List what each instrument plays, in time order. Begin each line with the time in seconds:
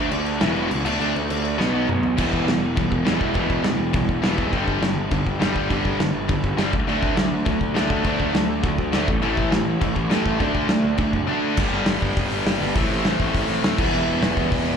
Already playing: overdriven electric guitar D3 A3 D4
0.11 picked electric bass D2, overdriven electric guitar D3 A3 D4, crash
0.26 crash
0.41 picked electric bass E1, overdriven electric guitar E2 B2, distorted electric guitar E3 G3 B3 E4, snare, crash
0.55 distorted electric guitar E2 B2 E3 G3 B3 E4, crash
0.70 picked electric bass C#2, overdriven electric guitar E2 B2 E3, crash
0.85 picked electric bass D2, distorted electric guitar D3 F#3 A3 D4, crash
1.00 picked electric bass D2, distorted electric guitar D3 F#3 A3 D4, crash
1.15 picked electric bass D2, crash
1.29 picked electric bass D2, overdriven electric guitar D3 A3 D4, crash
1.45 crash
1.58 picked electric bass B1, distorted electric guitar B2 F#3 B3 D#4, snare
1.75 distorted electric guitar B2 F#3 B3 D#4
1.88 picked electric bass B1, overdriven electric guitar B2 F#3 B3, mid tom
2.03 floor tom
2.17 picked electric bass E1, overdriven electric guitar E2 B2, distorted electric guitar E3 G3 B3, kick, crash
2.33 picked electric bass E1, kick
2.47 picked electric bass E1, overdriven electric guitar E2 B2, distorted electric guitar E3 G3, snare, crash
2.63 picked electric bass E1
2.77 picked electric bass E1, overdriven electric guitar E2 B2, distorted electric guitar E3 G3, kick, crash
2.91 picked electric bass E1, kick
3.06 picked electric bass E1, overdriven electric guitar E2 B2, distorted electric guitar E3 G3 B3, snare, crash
3.21 picked electric bass E1, kick
3.34 picked electric bass E1, overdriven electric guitar E2 B2, distorted electric guitar E3 G3 B3, kick, crash
3.50 picked electric bass E1, kick
3.63 picked electric bass E1, overdriven electric guitar E2 B2, distorted electric guitar E3 G3, snare, crash
3.78 picked electric bass E1
3.93 picked electric bass E1, overdriven electric guitar E2 B2, distorted electric guitar E3 G3, kick, crash
4.09 picked electric bass E1, kick
4.23 picked electric bass E1, overdriven electric guitar E2 B2, distorted electric guitar E3 G3 B3, snare, crash
4.38 picked electric bass E1, kick
4.52 picked electric bass G1, distorted electric guitar G2 D3 G3, kick, crash
4.67 picked electric bass G1, kick
4.81 picked electric bass G1, distorted electric guitar G2 D3, overdriven electric guitar G3, snare, crash
4.96 picked electric bass G1
5.11 picked electric bass G1, distorted electric guitar G2 D3, overdriven electric guitar G3, kick, crash
5.26 picked electric bass G1, kick
5.40 picked electric bass G1, distorted electric guitar G2 D3 G3, snare, crash
5.56 picked electric bass G1, kick
5.70 picked electric bass G1, distorted electric guitar G2 D3 G3, kick, crash
5.85 picked electric bass G1, kick
5.99 picked electric bass G1, distorted electric guitar G2 D3, overdriven electric guitar G3, snare, crash
6.14 picked electric bass G1
6.28 picked electric bass G1, distorted electric guitar G2 D3, overdriven electric guitar G3, kick, crash
6.44 picked electric bass G1, kick
6.58 picked electric bass G1, distorted electric guitar G2 D3 G3, snare, crash
6.73 picked electric bass D2, kick
6.88 picked electric bass D2, distorted electric guitar D3 F#3 A3, overdriven electric guitar D4, crash
7.03 picked electric bass D2, kick
7.16 picked electric bass D2, distorted electric guitar D3 F#3, overdriven electric guitar A3 D4, snare, crash
7.31 picked electric bass D2
7.46 picked electric bass D2, distorted electric guitar D3 F#3, overdriven electric guitar A3 D4, kick, crash
7.61 picked electric bass D2, kick
7.75 picked electric bass D2, distorted electric guitar D3 F#3 A3, overdriven electric guitar D4, snare, crash
7.90 picked electric bass D2, kick
8.03 picked electric bass D2, distorted electric guitar D3 F#3 A3, overdriven electric guitar D4, kick, crash
8.20 picked electric bass D2, kick
8.34 picked electric bass D2, distorted electric guitar D3 F#3, overdriven electric guitar A3 D4, snare, crash
8.50 picked electric bass D2
8.63 picked electric bass D2, distorted electric guitar D3 F#3, overdriven electric guitar A3 D4, kick, crash
8.78 picked electric bass D2, kick
8.92 picked electric bass D2, distorted electric guitar D3 F#3 A3, overdriven electric guitar D4, snare, crash
9.08 picked electric bass A1, kick
9.22 picked electric bass A1, distorted electric guitar A2 E3 A3, crash
9.37 picked electric bass A1, kick
9.51 picked electric bass A1, distorted electric guitar A2 E3, overdriven electric guitar A3, snare, crash
9.67 picked electric bass A1
9.81 picked electric bass A1, distorted electric guitar A2 E3, overdriven electric guitar A3, kick, crash
9.96 picked electric bass A1, kick
10.11 picked electric bass A1, distorted electric guitar A2 E3 A3, snare, crash
10.26 picked electric bass A1, kick
10.40 picked electric bass D2, distorted electric guitar D3 A3 D4, kick, crash
10.55 picked electric bass D2, kick
10.69 picked electric bass D2, distorted electric guitar D3 A3, overdriven electric guitar D4, snare, crash
10.84 picked electric bass D2
10.98 picked electric bass D2, distorted electric guitar D3 A3, overdriven electric guitar D4, kick, crash
11.13 picked electric bass F#1, kick
11.29 distorted electric guitar D3 A3 D4
11.57 picked electric bass G1, distorted electric guitar G2 D3 G3 B3, kick, crash
11.61 distorted electric guitar D4
11.72 picked electric bass G1
11.86 picked electric bass G1, snare, open hi-hat
12.02 picked electric bass G1, kick
12.16 picked electric bass G1, kick, open hi-hat
12.31 picked electric bass G1
12.46 picked electric bass G1, snare, open hi-hat
12.61 picked electric bass G1, distorted electric guitar G2 D3 G3 B3 D4
12.74 picked electric bass A1, distorted electric guitar A2 E3 A3 C4 E4, kick, open hi-hat
12.91 picked electric bass A1
13.05 picked electric bass A1, snare, open hi-hat
13.20 picked electric bass A1, kick
13.34 picked electric bass A1, kick, open hi-hat
13.48 picked electric bass A1
13.63 picked electric bass D2, snare, open hi-hat
13.77 picked electric bass E1, distorted electric guitar E2 B2 E3 G3 B3, kick, crash
13.81 distorted electric guitar E4
13.93 picked electric bass E1
14.07 picked electric bass E1
14.22 picked electric bass E1, snare, open hi-hat
14.37 picked electric bass E1, kick
14.52 picked electric bass E1, kick, open hi-hat
14.66 picked electric bass E1